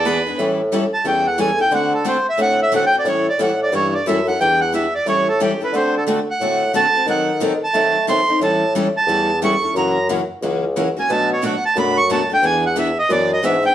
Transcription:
Already playing: E2 D5
0.05 E3 B3 D4 G#4 B4
0.27 B3 D4 G#4
0.38 A2 E3 G3 C#4 E4 A4
0.72 E3 G3 C#4 E4 A4
0.94 A5
1.04 E2 E3 G3 C#4 E4 A4 G5
1.27 F#5
1.38 E3 G3 C#4 E4 A4 G#5
1.58 C#4 E4 A4 G5
1.71 D3 A3 C4 F#4 A4 F#5
1.94 A4
2.04 D3 A3 C4 F#4 A4 C5
2.29 E5
2.38 A2 D3 A3 C4 F#4 A4 F#5
2.63 E5
2.72 D3 A3 C4 F#4 A4 F#5
2.86 G5
2.92 C4 F#4 A4
2.99 D5
3.04 A2 E3 G3 C#4 E4 A4 C#5
3.29 D5
3.38 A2 E3 G3 C#4 E4 A4 F#5
3.63 D5
3.72 G2 E3 G3 C#4 E4 A4 C#5
3.95 D5
4.06 F#2 E3 G3 C#4 E4 A4 E5
4.27 C#4 E4 A4 F#5
4.40 E2 E3 G3 B3 D4 E4 G4 B4 G5
4.61 F#5
4.72 E3 G3 B3 D4 E4 G4 B4 E5
4.95 D5
5.06 A2 E3 G3 C#4 E4 A4 C#5
5.29 A4
5.40 E3 G3 C#4 E4 G4 A4
5.61 C#4 E4 A4 B4
5.72 D3 A3 C4 F#4 A4 C5
5.97 A4
6.07 D3 A3 C4 F#4 A4
6.31 F#5
6.40 A2 D3 A3 C4 F#4 A4
6.73 D3 A3 C4 F#4 A4 A5
6.94 C4 F#4 A4
7.06 D#3 F#3 C4 D#4 A4
7.10 F#5
7.40 D#3 F#3 C4 D#4 A4
7.64 A5
7.74 D#3 F#3 A3 C4 D#4 A4
8.07 D#3 F#3 C4 D#4 A4 C6
8.28 C4 D#4 A4
8.40 A2 E3 G3 C#4 E4 A4 A5
8.75 E3 G3 C#4 E4 A4
8.97 A5
9.07 E2 E3 G3 C#4 E4 A4
9.42 E3 G3 C#4 E4 A4 C#6
9.62 C#4 E4 A4
9.74 F#2 C#3 E3 F#3 A#3 C#4 E4 F#4 A#4 A#5
10.09 C#3 E3 F#3 A#3 C#4 E4 F#4 A#4
10.42 C#2 C#3 E3 F#3 A#3 C#4 E4 F#4 A#4
10.76 C#3 E3 F#3 A#3 C#4 E4 F#4 A#4
10.97 A#3 C#4 F#4 G#5
11.09 B2 F#3 A3 D4 F#4 B4 A5
11.33 C#5
11.42 B2 F#3 A3 D4 F#4 B4
11.46 F#5
11.66 A5
11.76 F#2 B2 F#3 A3 D4 F#4 B4 B5
11.97 C#6
12.10 B2 F#3 A3 D4 F#4 B4 A5
12.30 A3 D4 F#4
12.34 G5
12.42 E2 E3 B3 D4 G#4 B4 G#5
12.67 F#5
12.76 E3 B3 D4 G#4 B4 E5
12.99 D#5
13.09 F#2 E3 B3 D4 G#4 B4 D5
13.33 D#5
13.43 G#2 E3 B3 D4 G#4 B4 E5
13.63 B3 D4 G#4 G5

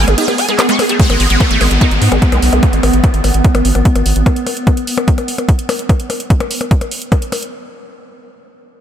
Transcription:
Already playing: B3
0.08 G#1 G#4, closed hi-hat, percussion blips
0.18 D#4 G#4, closed hi-hat, ride
0.28 G#4, closed hi-hat, percussion blips
0.38 G#5, open hi-hat
0.49 G#3 G#4, closed hi-hat
0.59 G#4, clap, closed hi-hat, ride, percussion blips
0.69 G#3 C#6, closed hi-hat
0.79 G#4, open hi-hat, percussion blips
0.89 A3 G#4, closed hi-hat
1.00 G#3 B3 D#4, kick, closed hi-hat, downlifter
1.06 G#4
1.10 G#1 G#3, closed hi-hat, percussion blips
1.20 G#1 G#3, open hi-hat
1.30 G#1 G#3, closed hi-hat
1.40 A3, kick, closed hi-hat, percussion blips
1.51 G#1 A3, closed hi-hat
1.61 G#1 G#3, open hi-hat, percussion blips
1.71 G#1, closed hi-hat
1.81 D#4, kick, closed hi-hat, percussion blips
1.91 G#1, closed hi-hat
2.02 G#2, open hi-hat
2.12 G#1 G#3, closed hi-hat, percussion blips
2.22 kick, closed hi-hat
2.32 B1 G#3, closed hi-hat, percussion blips
2.42 B1, open hi-hat
2.53 B1 A3, closed hi-hat, percussion blips
2.63 kick, closed hi-hat
2.73 G#1, closed hi-hat
2.83 G#1, open hi-hat, percussion blips
2.93 G#1, closed hi-hat
3.04 kick, closed hi-hat, percussion blips
3.14 G#1, closed hi-hat
3.24 G#1, open hi-hat, percussion blips
3.34 G#1, closed hi-hat
3.44 kick, closed hi-hat
3.55 G#1, closed hi-hat, percussion blips
3.65 G#1, open hi-hat
3.75 G#1, closed hi-hat, percussion blips
3.85 kick, closed hi-hat
3.95 G#1, closed hi-hat, percussion blips
4.06 G#1, open hi-hat
4.16 G#1, closed hi-hat
4.26 kick, closed hi-hat, percussion blips
4.36 closed hi-hat
4.47 open hi-hat, percussion blips
4.57 closed hi-hat
4.67 kick, closed hi-hat, percussion blips
4.77 closed hi-hat
4.87 open hi-hat
4.98 closed hi-hat, percussion blips
5.08 kick, closed hi-hat
5.18 closed hi-hat, percussion blips
5.28 open hi-hat
5.38 closed hi-hat, percussion blips
5.49 kick, closed hi-hat
5.59 closed hi-hat
5.69 open hi-hat, percussion blips
5.79 closed hi-hat
5.89 kick, closed hi-hat, percussion blips
6.00 closed hi-hat
6.10 open hi-hat, percussion blips
6.20 closed hi-hat
6.30 kick, closed hi-hat
6.40 closed hi-hat, percussion blips
6.51 open hi-hat
6.61 closed hi-hat, percussion blips
6.71 kick, closed hi-hat
6.81 closed hi-hat, percussion blips
6.91 open hi-hat
7.02 closed hi-hat
7.12 kick, closed hi-hat, percussion blips
7.22 closed hi-hat
7.32 open hi-hat, percussion blips
7.42 closed hi-hat

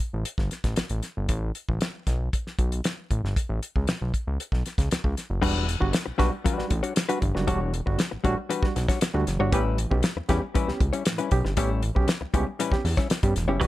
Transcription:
0.13 A1
0.25 closed hi-hat
0.38 G1, kick, snare
0.51 snare, closed hi-hat
0.64 A1, kick, snare, closed hi-hat
0.76 A1, snare, closed hi-hat
0.89 A1, closed hi-hat
1.03 snare, closed hi-hat
1.17 G1
1.29 A1, kick, closed hi-hat
1.55 closed hi-hat
1.69 A1, kick
1.81 snare, closed hi-hat
2.07 B1, kick, snare, closed hi-hat
2.33 kick, closed hi-hat
2.47 snare
2.59 B1, kick, closed hi-hat
2.72 closed hi-hat
2.84 snare, closed hi-hat
3.11 A1, kick, closed hi-hat
3.24 G1, snare
3.36 kick, closed hi-hat
3.49 A1
3.63 closed hi-hat
3.76 C#2, kick
3.87 B1, snare, closed hi-hat
4.02 B1
4.14 kick, closed hi-hat
4.27 C#2
4.40 closed hi-hat
4.52 B1, kick, snare
4.66 snare, closed hi-hat
4.78 C#2, kick, snare, closed hi-hat
4.91 C#2, snare, closed hi-hat
5.04 C#2, kick
5.17 snare, closed hi-hat
5.30 F#1
5.42 E1 G3 D4 F#4 B4, kick, crash
5.68 E3, closed hi-hat
5.80 G1 G3 D4 F#4, muted hollow-body jazz guitar stroke, kick
5.92 muted hollow-body jazz guitar stroke, snare, closed hi-hat
6.06 B1, muted hollow-body jazz guitar stroke
6.18 B1 G3 D4 F#4 B4, kick, snare, closed hi-hat
6.32 muted hollow-body jazz guitar stroke
6.44 E3 G3 D4 F#4 B4, kick, closed hi-hat
6.58 A1 G3 D4 F#4, snare
6.70 A1 D4 F#4, muted hollow-body jazz guitar stroke, kick, closed hi-hat
6.83 G3 D4 F#4 C#5, closed hi-hat
6.95 muted hollow-body jazz guitar stroke, snare, closed hi-hat
7.09 G3 D4 F#4 B4, closed hi-hat
7.22 G1 E3, kick, closed hi-hat
7.35 F#1 G3 D4 F#4, muted hollow-body jazz guitar stroke, snare
7.47 E1 G3 D4 F#4 C#5, kick, closed hi-hat
7.74 E3, closed hi-hat
7.86 G1 G3 D4 F#4, muted hollow-body jazz guitar stroke, kick
7.98 muted hollow-body jazz guitar stroke, snare, closed hi-hat
8.11 A1, muted hollow-body jazz guitar stroke
8.24 A1 G3 D4 F#4 C#5, kick, closed hi-hat
8.37 muted hollow-body jazz guitar stroke
8.49 E3 G3 D4 F#4 B4, closed hi-hat
8.63 B1 G3 D4 F#4, kick, snare
8.76 B1, muted hollow-body jazz guitar stroke, snare, closed hi-hat
8.88 G3 D4 F#4 C#5, kick, snare, closed hi-hat
9.01 muted hollow-body jazz guitar stroke, snare, closed hi-hat
9.14 D2 G3 D4 F#4, muted hollow-body jazz guitar stroke
9.27 F#1 E3, snare, closed hi-hat
9.39 G1 G3 D4 F#4 C#5
9.52 A1 G3 B3 C#4 E4 G4 B4, kick, closed hi-hat
9.78 A2 E3, closed hi-hat
9.90 B1 B3 C#4 G4, muted hollow-body jazz guitar stroke, kick
10.03 muted hollow-body jazz guitar stroke, snare, closed hi-hat
10.16 E2, muted hollow-body jazz guitar stroke
10.29 E2 G3 B3 C#4 E4 G4 B4, kick, snare, closed hi-hat
10.42 muted hollow-body jazz guitar stroke
10.54 A2 E3 G3 C#4 E4 B4, kick, closed hi-hat
10.67 C#2 B3 C#4 G4, snare
10.80 C#2 C#4 G4, muted hollow-body jazz guitar stroke, kick, closed hi-hat
10.93 G3 C#4 E4 C#5, closed hi-hat
11.05 A2 E3, muted hollow-body jazz guitar stroke, snare, closed hi-hat
11.18 G3 C#4 E4 B4, closed hi-hat
11.31 B1 B3 C#4 G4, kick, closed hi-hat
11.45 G1 C#4 G4, muted hollow-body jazz guitar stroke, snare
11.57 A1 G3 B3 C#4 E4 G4 C#5, kick, closed hi-hat
11.83 A2 E3, closed hi-hat
11.95 B1 B3 C#4 G4, muted hollow-body jazz guitar stroke, kick
12.08 muted hollow-body jazz guitar stroke, snare, closed hi-hat
12.21 C#2, muted hollow-body jazz guitar stroke
12.34 C#2 G3 B3 C#4 E4 G4 C#5, kick, closed hi-hat
12.47 muted hollow-body jazz guitar stroke
12.59 A2 E3 G3 C#4 E4 B4, closed hi-hat
12.72 E2 B3 C#4 G4, kick, snare
12.84 E2, muted hollow-body jazz guitar stroke, snare, open hi-hat
12.97 G3 C#4 E4 C#5, kick, snare, closed hi-hat
13.10 muted hollow-body jazz guitar stroke, snare, closed hi-hat
13.23 G2 B3 C#4 G4, muted hollow-body jazz guitar stroke, kick, closed hi-hat
13.36 E1 A2 E3, snare, closed hi-hat
13.48 F#1 G3 B3 C#4 E4 G4 C#5
13.60 E1 E3 G3 D4 F#4 B4, kick, closed hi-hat

